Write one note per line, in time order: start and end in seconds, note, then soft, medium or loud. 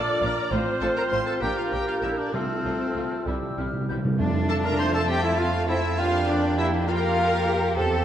0.00 0.34 A#3 medium
0.00 0.51 D4 medium
0.00 0.34 F4 medium
0.00 0.21 A4 medium
0.00 0.51 D5 loud
0.00 0.53 D5 medium
0.00 0.47 F6 medium
0.21 0.29 A#1 medium
0.21 0.30 A#2 medium
0.21 0.30 D4 medium
0.21 0.30 F4 medium
0.21 0.35 A#4 medium
0.21 0.51 A#4 medium
0.21 0.51 A#5 medium
0.51 0.59 A1 medium
0.51 0.59 A2 medium
0.51 1.40 C4 medium
0.51 1.43 C4 medium
0.51 0.60 C4 medium
0.51 1.40 F4 medium
0.51 0.60 F4 medium
0.51 1.41 C5 medium
0.51 1.43 C5 medium
0.51 1.44 F6 medium
0.81 0.89 A1 medium
0.81 0.90 A2 medium
0.81 0.90 C4 medium
0.81 0.90 F4 medium
0.81 0.95 A4 medium
0.81 0.88 A4 medium
0.81 0.87 A5 medium
0.96 1.03 A#4 medium
0.96 1.03 A#5 loud
1.10 1.20 A1 medium
1.10 1.20 A2 medium
1.10 1.19 C4 medium
1.10 1.20 F4 medium
1.10 1.26 C5 medium
1.10 1.18 C5 medium
1.10 1.26 C6 medium
1.27 1.33 A4 medium
1.27 1.34 A4 medium
1.27 1.33 A5 medium
1.40 1.50 A#1 medium
1.40 1.50 A#2 medium
1.40 2.33 A#3 medium
1.40 1.50 A#3 medium
1.40 2.33 D4 medium
1.40 1.50 D4 medium
1.40 1.47 G4 medium
1.40 2.34 G4 medium
1.40 1.59 G4 medium
1.40 2.32 A#4 medium
1.40 2.33 A#4 medium
1.40 1.56 G5 medium
1.40 2.34 G6 medium
1.57 1.73 F4 medium
1.57 1.75 F4 medium
1.57 1.63 F5 medium
1.72 1.80 A#1 medium
1.72 1.81 A#2 medium
1.72 1.80 A#3 medium
1.72 1.80 D4 medium
1.72 1.87 G4 medium
1.72 1.87 G5 medium
1.88 2.05 F4 medium
1.88 1.95 F4 medium
1.88 1.94 F5 medium
2.02 2.11 A#1 medium
2.02 2.11 A#2 medium
2.02 2.11 A#3 medium
2.02 2.10 D4 medium
2.02 2.19 E4 medium
2.02 2.20 E4 medium
2.02 2.09 E5 medium
2.18 2.33 D4 medium
2.18 2.36 D4 medium
2.18 2.33 D5 medium
2.33 2.42 C2 medium
2.33 3.23 C3 loud
2.33 2.42 C3 medium
2.33 3.28 A3 medium
2.33 2.42 A3 medium
2.33 3.85 C4 medium
2.33 3.25 C4 medium
2.33 3.27 C4 medium
2.33 2.41 F4 medium
2.33 3.25 F4 medium
2.33 3.73 A4 medium
2.33 3.28 A4 medium
2.33 3.26 C5 medium
2.33 3.25 F6 medium
2.65 2.73 C2 medium
2.65 2.73 C3 medium
2.65 2.73 A3 medium
2.65 2.73 F4 medium
2.95 3.04 C2 medium
2.95 3.03 C3 medium
2.95 3.04 A3 soft
2.95 3.04 F4 medium
3.26 3.34 C2 medium
3.26 3.34 C3 medium
3.26 3.33 C3 soft
3.26 3.88 G3 medium
3.26 3.34 G3 medium
3.26 3.88 E4 medium
3.26 3.35 E4 medium
3.26 3.89 G4 medium
3.26 3.60 E6 medium
3.34 3.42 C3 soft
3.43 3.49 C3 soft
3.50 3.57 C3 soft
3.57 3.65 C2 medium
3.57 3.66 C3 medium
3.57 3.65 C3 medium
3.57 3.66 G3 soft
3.57 3.66 E4 soft
3.57 3.88 F6 medium
3.66 3.72 C3 medium
3.73 3.80 C3 medium
3.81 3.88 C3 medium
3.89 3.97 C2 medium
3.89 3.96 C3 medium
3.89 3.97 C3 medium
3.89 3.97 G3 soft
3.89 3.97 E4 soft
3.89 3.96 G6 medium
3.97 4.04 C3 medium
4.05 4.12 C3 loud
4.19 7.73 F2 medium
4.19 5.05 F2 loud
4.19 6.00 A3 medium
4.19 5.95 A3 medium
4.19 5.05 D4 loud
4.19 5.95 F4 medium
4.19 5.95 A5 medium
4.49 4.66 A4 medium
4.49 4.56 A4 medium
4.49 4.55 A4 medium
4.49 4.55 A5 loud
4.49 4.55 A5 medium
4.64 4.79 A#4 medium
4.64 4.78 A#4 medium
4.64 4.78 A#5 medium
4.64 4.79 A#5 loud
4.79 4.89 C4 medium
4.79 4.93 C5 loud
4.79 4.94 C5 medium
4.79 4.90 C5 medium
4.79 4.94 C5 medium
4.79 4.85 C6 loud
4.79 4.94 C6 loud
4.94 5.01 A4 medium
4.94 5.09 A4 medium
4.94 5.08 A4 medium
4.94 5.08 A5 medium
4.94 5.09 A5 loud
5.08 5.99 C4 medium
5.08 5.23 G4 loud
5.08 5.25 G4 medium
5.08 5.23 G4 loud
5.08 5.26 G5 medium
5.08 5.23 G5 loud
5.23 5.40 E4 medium
5.23 5.38 E4 medium
5.23 5.38 E5 loud
5.23 5.41 E5 medium
5.37 5.46 F4 medium
5.37 5.52 F4 medium
5.37 5.68 F4 medium
5.37 5.68 F5 loud
5.37 5.68 F5 medium
5.68 5.79 C4 medium
5.68 5.97 E4 medium
5.68 5.76 E4 medium
5.68 6.00 E4 medium
5.68 5.79 C5 medium
5.68 5.98 E5 loud
5.68 5.76 E5 medium
5.97 6.88 A#3 medium
5.97 7.73 A#3 medium
5.97 6.87 D4 medium
5.97 6.29 F4 medium
5.97 6.28 F4 medium
5.97 8.05 G4 medium
5.97 6.05 F5 medium
5.97 6.29 F5 loud
5.97 6.87 G5 medium
6.28 6.59 D4 medium
6.28 6.58 D4 medium
6.28 6.42 D4 medium
6.28 6.58 D5 loud
6.28 6.36 D5 medium
6.58 6.69 A#3 medium
6.58 6.87 E4 medium
6.58 6.72 E4 medium
6.58 6.67 E4 medium
6.58 6.69 G4 medium
6.58 6.66 E5 loud
6.58 6.65 E5 loud
6.88 7.78 A#3 medium
6.88 7.75 F4 medium
6.88 7.75 F4 loud
6.88 7.75 F4 medium
6.88 7.75 A#4 loud
6.88 6.91 F5 loud
6.88 7.75 F5 medium
6.88 7.75 G5 medium
6.96 7.02 G5 medium
7.02 7.77 F5 loud
7.47 7.58 A#3 medium
7.47 7.57 G4 medium
7.77 8.05 E2 loud
7.77 8.05 C4 medium
7.77 8.05 A4 loud
7.77 8.05 G5 medium